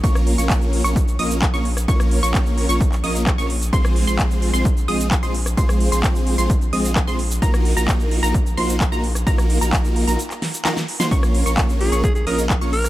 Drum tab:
HH |xxoxxxoxxxoxxxox|xxoxxxoxxxoxxxox|xxoxxxoxxxoxxxox|xxoxxxoxxxoxxxox|
SH |xx-xxx-xxx-xxx-x|xx-xxx-xxx-xxx-x|xx-xxx-xxx-xxx-x|xx-xxx-xxx-xxx-x|
CP |----x-------x---|----x----x--x---|----x-------x---|----x-------x---|
SD |-r-------------r|-r----------r---|-r-------------r|-r----------r---|
BD |o---o---o---o---|o---o---o---o---|o---o---o---o---|o---o---o---o---|

HH |xxoxxxoxxxoxxxox|xxoxxxoxxxoxxxox|xxoxxxoxxxoxxxox|
SH |xx-xxx-xxx-xxx-x|xx-xxx-xxx-xxx-x|xx-xxx-xxx-xxx-x|
CP |----x-------x---|----x----x--x---|----x-------x---|
SD |-r-------------r|-r--------o-oo-o|-r-------------r|
BD |o---o---o---o---|o---o-----------|o---o---o---o---|